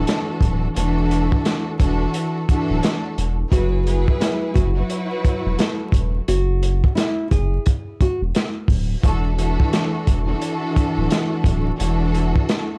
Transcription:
Already playing: E3 D4 F#4 A4
0.07 snare, closed hi-hat
0.41 D1, kick, closed hi-hat
0.75 E1 E3 D4 F#4 A4, closed hi-hat
1.11 closed hi-hat
1.32 kick
1.45 snare, closed hi-hat
1.79 E1 E3 D4 F#4 A4, kick, closed hi-hat
2.14 closed hi-hat
2.48 E3 D4 F#4 A4, kick, closed hi-hat
2.70 D1
2.83 snare, closed hi-hat
3.18 E1, closed hi-hat
3.51 F#1 F#3 E4 F#4 G#4 B4, kick, closed hi-hat
3.86 F#3 E4 G#4 B4, closed hi-hat
4.08 kick
4.20 E4, snare, closed hi-hat
4.54 F#1 F#4, kick, closed hi-hat
4.75 F#3 E4 F#4 B4
4.90 closed hi-hat
5.25 kick, closed hi-hat
5.46 E1
5.59 A4, snare, closed hi-hat
5.92 E1, kick, closed hi-hat
6.28 F#1 F#4, closed hi-hat
6.63 closed hi-hat
6.84 kick
6.95 E4, snare, closed hi-hat
7.31 F#1 G#4, kick, closed hi-hat
7.66 kick, closed hi-hat
8.01 F#4, kick, closed hi-hat
8.21 E1
8.35 snare, closed hi-hat
8.68 D1, kick, open hi-hat
9.04 E1 E3 D4 F#4 A4, kick, closed hi-hat
9.37 E3 D4 F#4 A4, closed hi-hat
9.60 kick
9.73 snare, closed hi-hat
10.07 E1, kick, closed hi-hat
10.27 E3 D4 F#4 A4
10.41 closed hi-hat
10.76 kick, closed hi-hat
10.97 D1
11.10 snare, closed hi-hat
11.44 D1, kick, closed hi-hat
11.78 E1 E3 D4 F#4 A4, closed hi-hat
12.14 closed hi-hat
12.36 kick
12.49 snare, closed hi-hat

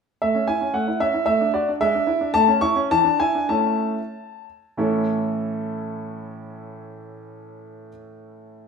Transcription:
0.22 A3 E5
0.35 C#4
0.48 E4 G#5
0.61 C#4
0.74 A3 F#5
0.88 E4
1.00 C#4 E5
1.14 E4
1.26 A3 E5
1.41 D4
1.54 F#4 D5
1.69 D4
1.81 G#3 E5
1.95 D4
2.07 E4
2.21 D4
2.34 A3 A5
2.48 C#4
2.61 E4 C#6
2.76 C#4
2.91 E3 A5
3.04 D4
3.20 E4 G#5
3.35 D4
3.49 A3 C#4 E4 A5
4.77 A2 E3 C#4 E4 A4 C#5

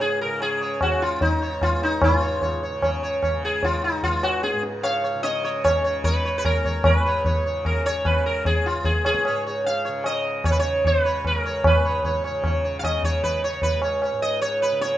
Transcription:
Already playing: C#2 G#2 C#3
0.00 G#4, tabla tin
0.21 C#3 A#4
0.40 G#4, tabla na
0.61 C#5
0.81 F#4, tabla na, tabla ge
0.85 C#3
1.02 F4
1.21 D#4, tabla tin, tabla ge
1.42 C#5
1.48 C#2
1.61 F4, tabla na, tabla ge
1.82 D#4, tabla te
2.01 F4, tabla na, tabla ge
2.07 G#2
2.22 C#5
2.41 C#5, tabla tin, tabla ge
2.63 C#5
2.70 C#3
2.82 C#5, tabla na, tabla ge
3.03 C#5
3.23 C#5, tabla na, tabla ge
3.29 C#3
3.43 G#4, tabla te
3.63 F4, tabla tin, tabla ge
3.84 D#4
3.92 C#2
4.03 F4, tabla tin, tabla ge
4.23 F#4, tabla na
4.43 G#4, tabla te
4.53 G#2
4.63 tabla te
4.83 C#5 F5, tabla tin
5.04 C#5
5.15 C#3
5.23 C#5 D#5, tabla te
5.43 C#5, tabla te
5.64 C#5, tabla na, tabla ge
5.75 C#3
5.84 C#5
6.04 B4 C#5, tabla tin, tabla ge
6.25 C#5
6.35 C#2 B4
6.45 A#4 C#5, tabla na, tabla ge
6.65 C#5, tabla ge
6.84 G#2 A#4, tabla na, tabla ge
6.96 B4
7.06 C#5
7.25 C#5, tabla tin, tabla ge
7.46 C#3 C#5
7.65 A#4, tabla na, tabla ge
7.86 C#5
8.05 C#3 B4, tabla na, tabla ge
8.26 A#4
8.45 G#4, tabla tin, tabla ge
8.66 C#2 F4
8.84 G#4, tabla tin, tabla ge
9.05 G#4, tabla na
9.14 tabla ke
9.25 G#2 C#5, tabla na
9.47 C#5
9.64 F5, tabla tin
9.85 C#3 C#5
10.04 D#5, tabla na
10.44 C#3 C#5, tabla na, tabla ge
10.51 B4
10.59 C#5
10.85 B4, tabla tin, tabla ge
11.05 C#2 C#5
11.25 B4, tabla na, tabla ge
11.38 A#4
11.45 C#5
11.64 B4, tabla na, tabla ge
11.70 G#2
11.85 C#5
12.04 C#5, tabla tin, tabla ge
12.24 C#5, tabla na
12.31 C#3
12.44 C#5, tabla na, tabla ge
12.64 C#5
12.79 F5
12.84 D#5, tabla na, tabla ge
12.90 C#3
13.03 C#5, tabla ge
13.23 B4, tabla tin, tabla ge
13.44 C#5
13.52 C#2
13.62 B4, tabla tin, tabla ge
13.82 C#5, tabla na
14.02 C#5, tabla na
14.12 G#2
14.22 D#5
14.41 C#5, tabla tin
14.62 B4
14.72 C#3
14.81 C#5, tabla te

